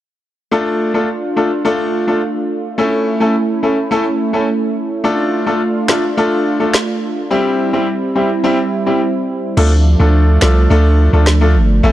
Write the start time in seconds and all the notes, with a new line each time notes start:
0.51 A3 D4 F4 A4
0.94 A3 D4 F4 A4
1.36 A3 D4 F4 A4
1.65 A3 D4 F4 A4
2.07 A3 D4 F4 A4
2.78 A3 C#4 E4 A4
3.20 A3 C#4 E4 A4
3.63 A3 C#4 E4 A4
3.91 A3 C#4 E4 A4
4.33 A3 C#4 E4 A4
5.04 A3 D4 F4 A4
5.47 A3 D4 F4 A4
5.88 A3 D4 F4 A4, finger snap, snare
6.17 A3 D4 F4 A4
6.60 A3 D4 F4 A4
6.74 finger snap, snare
7.31 G3 C4 E4 G4
7.73 G3 C4 E4 G4
8.15 G3 C4 E4 G4
8.44 G3 C4 E4 G4
8.86 G3 C4 E4 G4
9.57 D2 F3 A3 D4 F4 A4, crash
9.99 D2 A3 D4 F4 A4
10.41 C2 A3 D4 F4 A4, finger snap, snare
10.70 D2 A3 D4 F4 A4
11.13 D2 A3 D4 F4 A4
11.26 finger snap, snare
11.41 A3 D4 F4 A4
11.55 G1
11.83 A1 E3 A3 C#4 E4 A4